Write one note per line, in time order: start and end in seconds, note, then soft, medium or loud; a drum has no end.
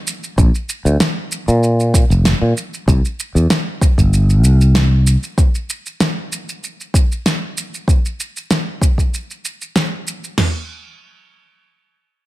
0.07 shaker medium
0.24 shaker soft
0.38 0.50 A#1 medium
0.38 kick loud
0.38 shaker soft
0.55 shaker soft
0.69 shaker medium
0.85 0.96 D2 medium
0.85 shaker soft
1.00 snare loud
1.00 shaker soft
1.32 shaker medium
1.48 2.03 A#2 medium
1.48 shaker soft
1.63 shaker soft
1.80 shaker soft
1.94 kick loud
1.94 shaker medium
2.10 2.32 F1 medium
2.10 shaker soft
2.25 snare loud
2.25 shaker soft
2.42 2.52 A#2 medium
2.57 shaker medium
2.74 shaker soft
2.88 3.00 C2 loud
2.88 kick loud
2.88 shaker soft
3.05 shaker soft
3.20 shaker medium
3.35 3.46 E2 medium
3.35 shaker soft
3.50 snare loud
3.50 shaker soft
3.81 kick loud
3.81 shaker medium
3.98 4.44 G1 medium
3.98 kick medium
3.98 shaker soft
4.14 shaker soft
4.30 shaker soft
4.44 5.16 C2 medium
4.44 shaker medium
4.61 shaker soft
4.75 snare loud
4.75 shaker soft
5.07 shaker medium
5.23 shaker soft
5.38 kick loud
5.38 shaker soft
5.55 shaker soft
5.70 shaker medium
5.86 shaker soft
6.00 snare medium
6.00 shaker soft
6.33 shaker medium
6.49 shaker soft
6.64 shaker soft
6.81 shaker soft
6.94 kick medium
6.94 shaker medium
7.12 shaker soft
7.26 snare medium
7.26 shaker soft
7.58 shaker medium
7.74 shaker soft
7.88 kick loud
7.88 shaker soft
8.06 shaker soft
8.20 shaker medium
8.37 shaker soft
8.51 snare medium
8.51 shaker soft
8.82 kick medium
8.82 shaker medium
8.98 kick medium
8.98 shaker soft
9.14 shaker soft
9.31 shaker soft
9.45 shaker medium
9.62 shaker soft
9.76 snare medium
9.76 shaker soft
10.08 shaker medium
10.24 shaker soft
10.38 snare medium
10.38 floor tom medium
10.38 crash medium